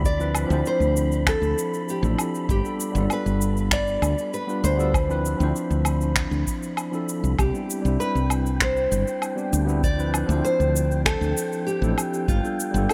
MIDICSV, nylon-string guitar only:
0, 0, Header, 1, 2, 480
1, 0, Start_track
1, 0, Tempo, 612245
1, 32, Time_signature, 4, 2, 24, 8
1, 10141, End_track
2, 0, Start_track
2, 0, Title_t, "Nylon-string guitar"
2, 0, Program_c, 0, 24
2, 43, Note_on_c, 0, 74, 109
2, 523, Note_off_c, 0, 74, 0
2, 527, Note_on_c, 0, 72, 108
2, 1007, Note_on_c, 0, 69, 109
2, 1014, Note_off_c, 0, 72, 0
2, 1487, Note_off_c, 0, 69, 0
2, 1490, Note_on_c, 0, 67, 88
2, 1817, Note_off_c, 0, 67, 0
2, 1965, Note_on_c, 0, 67, 100
2, 2451, Note_on_c, 0, 71, 97
2, 2453, Note_off_c, 0, 67, 0
2, 2919, Note_off_c, 0, 71, 0
2, 2922, Note_on_c, 0, 74, 108
2, 3397, Note_off_c, 0, 74, 0
2, 3400, Note_on_c, 0, 71, 94
2, 3636, Note_off_c, 0, 71, 0
2, 3639, Note_on_c, 0, 72, 89
2, 5284, Note_off_c, 0, 72, 0
2, 5793, Note_on_c, 0, 67, 91
2, 6272, Note_on_c, 0, 71, 99
2, 6287, Note_off_c, 0, 67, 0
2, 6754, Note_off_c, 0, 71, 0
2, 6757, Note_on_c, 0, 72, 101
2, 7443, Note_off_c, 0, 72, 0
2, 7712, Note_on_c, 0, 74, 119
2, 8186, Note_off_c, 0, 74, 0
2, 8189, Note_on_c, 0, 72, 112
2, 8639, Note_off_c, 0, 72, 0
2, 8667, Note_on_c, 0, 69, 108
2, 9145, Note_on_c, 0, 67, 101
2, 9164, Note_off_c, 0, 69, 0
2, 9484, Note_off_c, 0, 67, 0
2, 9630, Note_on_c, 0, 65, 100
2, 10116, Note_on_c, 0, 69, 96
2, 10126, Note_off_c, 0, 65, 0
2, 10141, Note_off_c, 0, 69, 0
2, 10141, End_track
0, 0, End_of_file